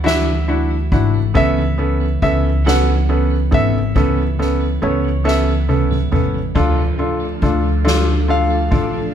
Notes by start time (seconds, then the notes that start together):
Already playing: D2 A3 E4
0.04 E3 D4 E4 F#4 E5, snare
0.27 E4
0.48 A3 D4 E4 F#4
0.70 E4
0.92 G#1 D4 E4 F#4, kick
1.14 A3
1.34 C#2 E3 B3 C#4 A4 E5, kick, ride
1.57 B3
1.78 E3 B3 C#4 A4
2.00 B3
2.22 C#2 B3 C#4 A4 E5, kick
2.43 E3
2.65 E3 B3 C#4 A4 F#5, snare
2.86 B3
3.08 E3 B3 C#4 A4
3.30 B3
3.51 G#1 B3 C#4 A4 E5, kick, ride
3.74 E3
3.95 C#2 E3 B3 C#4 A4, kick, ride
4.17 B3
4.39 E3 B3 C#4 A4, snare
4.60 B3
4.82 C#2 B3 C#4 A4 C#5, ride
5.04 E3
5.24 E3 B3 C#4 A4 E5, snare
5.48 B3
5.68 E3 B3 C#4 A4, high tom
5.91 B3, mid tom
6.12 A1 B3 C#4 A4, mid tom
6.34 E3
6.54 D2 F3 D4 F4 A4, kick, crash
6.76 A3
6.98 F3 D4 F4 A4, ride
7.20 A3
7.42 D2 D4 F4 A4, kick, ride
7.63 F3
7.85 F3 D4 F4 A4, snare
8.07 A3
8.28 F3 D4 F4 A4 F5
8.50 A3
8.71 A1 D4 F4 A4, kick, ride
8.93 F3